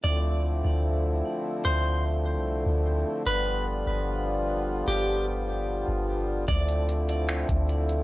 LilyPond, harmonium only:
\new Staff \with { instrumentName = "Harmonium" } { \time 4/4 \key d \dorian \tempo 4 = 149 << { <f a c' e'>1~ | <f a c' e'>1 | <f g b f'>1~ | <f g b f'>1 |
<f a c' e'>1 | } \\ { d1~ | d1~ | d1~ | d1 |
d1 | } >> }